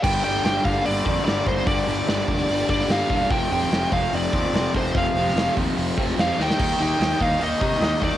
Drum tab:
CC |x---------------|----------------|----------------|----------------|
HH |--o-o-o-o-o-o-o-|o-o-o-o-o-o-o-o-|o-o-o-o-o-o-o-o-|o-o-o-o-o-o-o---|
SD |---oo------oo---|----o------oo---|---oo-------o---|---oo------oo-oo|
BD |o-----o---o---o-|o-----o---o---o-|o-----o---o---o-|o-----o---o-----|

CC |x---------------|
HH |--o-o-o-o-o-o-o-|
SD |----o------oo---|
BD |o-----o---o---o-|